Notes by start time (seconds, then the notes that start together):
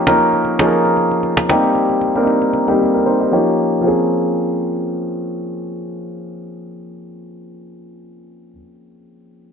Already playing: F3 A#3 C#4 D#4 G4
0.07 F3 A#3 C#4 D#4 A#4, cajon slap
0.19 cajon slap
0.33 cajon slap
0.45 cajon slap
0.59 F3 A#3 C#4 D#4 G#4, cajon slap
0.67 A#4
0.71 cajon slap
0.85 cajon slap
0.97 cajon slap
1.11 cajon slap
1.23 cajon slap
1.37 cajon slap
1.49 G3 A#3 C4 D#4 G4, cajon slap
1.63 cajon slap
1.75 cajon slap
1.90 cajon slap
2.01 cajon slap
2.15 G3 A#3 C4 D4 A#4, cajon slap
2.23 D#4
2.27 cajon slap
2.42 cajon slap
2.53 cajon slap
2.68 G3 A#3 C4 D#4 G4, cajon slap
2.80 A#3 G4
2.94 A#4
3.06 D#4 C5
3.20 G4 D#5
3.31 F3 A#3 C#4 D#4 G4
3.81 F3 A#3 C4
3.86 C#4 G#4